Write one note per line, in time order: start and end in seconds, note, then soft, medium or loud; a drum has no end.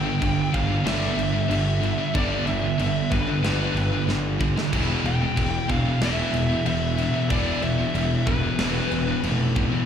0.00 0.21 G2 loud
0.00 0.18 G2 medium
0.00 0.20 D3 loud
0.00 0.19 D3 loud
0.00 0.21 G3 loud
0.00 0.55 G5 loud
0.20 0.42 G1 loud
0.20 0.49 G2 medium
0.20 0.50 D3 medium
0.20 0.53 G3 loud
0.20 kick medium
0.20 crash medium
0.52 0.75 G1 medium
0.52 0.66 G2 medium
0.52 0.66 D3 medium
0.52 0.86 G3 loud
0.52 0.83 F5 loud
0.52 kick medium
0.52 crash medium
0.67 0.83 G2 medium
0.67 0.83 D3 medium
0.84 1.06 G1 loud
0.84 1.15 G2 medium
0.84 1.15 D3 loud
0.84 1.16 G3 loud
0.84 1.46 E5 loud
0.84 snare loud
0.84 crash medium
1.16 1.38 G1 medium
1.16 1.32 G2 medium
1.16 1.31 D3 medium
1.16 crash medium
1.32 1.47 G2 medium
1.32 1.48 D3 medium
1.48 1.91 G1 loud
1.48 1.78 G2 medium
1.48 1.78 D3 medium
1.48 1.82 G3 loud
1.48 2.15 E5 medium
1.48 crash medium
1.81 1.97 G2 medium
1.81 1.97 D3 medium
1.81 2.15 G3 medium
1.81 crash medium
1.98 2.12 G2 medium
1.98 2.13 D3 medium
2.14 2.36 G1 loud
2.14 2.44 G2 loud
2.14 2.45 D3 loud
2.14 2.45 G3 loud
2.14 2.46 D5 loud
2.14 kick loud
2.14 crash medium
2.46 2.67 G1 medium
2.46 2.61 G2 medium
2.46 2.60 D3 loud
2.46 3.13 E5 loud
2.46 crash medium
2.62 2.77 G2 medium
2.62 2.78 D3 medium
2.78 2.99 G1 loud
2.78 3.07 G2 medium
2.78 3.08 D3 medium
2.78 3.11 G3 loud
2.78 crash medium
3.10 3.32 G1 medium
3.10 3.26 G2 medium
3.10 3.26 D3 medium
3.10 3.44 G3 loud
3.10 4.03 B4 medium
3.10 kick medium
3.10 crash medium
3.27 3.41 G2 medium
3.27 3.42 D3 loud
3.43 3.64 G1 loud
3.43 3.73 G2 loud
3.43 3.74 D3 loud
3.43 3.74 G3 medium
3.43 snare loud
3.43 crash medium
3.75 3.96 G1 loud
3.75 3.91 G2 medium
3.75 3.91 D3 medium
3.75 crash medium
3.92 4.06 G2 medium
3.92 4.06 D3 medium
4.07 4.49 G1 medium
4.07 4.37 G2 medium
4.07 4.37 D3 medium
4.07 4.39 G3 medium
4.07 snare medium
4.39 4.55 G2 medium
4.39 4.55 D3 medium
4.39 4.73 G3 loud
4.39 kick loud
4.56 4.72 G2 medium
4.56 4.72 D3 medium
4.56 snare loud
4.73 4.94 E1 loud
4.73 5.03 E2 loud
4.73 5.03 B2 loud
4.73 5.03 E3 loud
4.73 kick loud
4.73 crash loud
4.73 crash medium
5.04 5.25 E1 medium
5.04 5.20 E2 medium
5.04 5.19 B2 medium
5.04 5.66 G5 loud
5.04 crash medium
5.21 5.35 E2 medium
5.21 5.36 B2 medium
5.36 5.58 E1 loud
5.36 5.65 E2 medium
5.36 5.66 B2 medium
5.36 5.68 E3 loud
5.36 kick medium
5.36 crash medium
5.68 5.90 E1 medium
5.68 5.84 E2 medium
5.68 5.84 B2 medium
5.68 6.00 E3 medium
5.68 6.03 F5 loud
5.68 kick medium
5.68 crash medium
5.85 6.00 E2 medium
5.85 6.01 B2 medium
6.01 6.22 E1 medium
6.01 6.32 E2 medium
6.01 6.32 B2 loud
6.01 6.32 E3 loud
6.01 6.66 E5 medium
6.01 snare loud
6.01 crash loud
6.33 6.54 E1 medium
6.33 6.49 E2 medium
6.33 6.48 B2 medium
6.33 crash medium
6.50 6.64 E2 medium
6.50 6.65 B2 medium
6.65 7.07 E1 medium
6.65 6.95 E2 medium
6.65 6.95 B2 medium
6.65 6.97 E3 medium
6.65 7.29 E5 loud
6.65 crash medium
6.98 7.13 E2 medium
6.98 7.13 B2 medium
6.98 7.29 E3 loud
6.98 crash medium
7.14 7.29 E2 medium
7.14 7.30 B2 medium
7.30 7.51 E1 loud
7.30 7.60 E2 medium
7.30 7.61 B2 loud
7.30 7.61 E3 loud
7.30 7.63 D5 loud
7.30 kick loud
7.30 crash medium
7.62 7.83 E1 medium
7.62 7.77 E2 medium
7.62 7.77 B2 medium
7.62 8.29 E5 loud
7.62 crash medium
7.78 7.93 E2 medium
7.78 7.93 B2 medium
7.94 8.15 E1 loud
7.94 8.23 E2 medium
7.94 8.24 B2 medium
7.94 8.26 E3 loud
7.94 crash medium
8.26 8.48 E1 medium
8.26 8.42 E2 medium
8.26 8.42 B2 medium
8.26 8.58 E3 loud
8.26 9.19 B4 medium
8.26 kick medium
8.26 crash medium
8.43 8.57 E2 medium
8.43 8.58 B2 medium
8.58 8.80 E1 loud
8.58 8.89 E2 medium
8.58 8.89 B2 loud
8.58 8.90 E3 loud
8.58 snare loud
8.58 crash medium
8.91 9.12 E1 medium
8.91 9.06 E2 medium
8.91 9.06 B2 medium
8.91 crash medium
9.07 9.22 E2 medium
9.07 9.22 B2 medium
9.23 9.65 F1 medium
9.23 9.52 E2 medium
9.23 9.53 B2 medium
9.23 9.56 E3 medium
9.23 crash medium
9.56 9.71 E2 medium
9.56 9.71 B2 medium
9.56 9.86 E3 loud
9.56 kick loud
9.56 crash medium
9.72 9.86 E2 medium
9.72 9.86 B2 medium